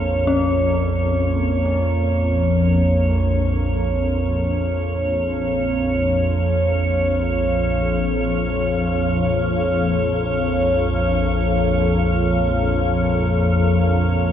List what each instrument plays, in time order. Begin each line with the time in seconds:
Already playing: synth drone A#1 F2, analog synth pad A#3 B3 D#4 F#4, ambient pad C#5
0.27 synth drone A#1 F2, synth bell C#4, ambient pad C#5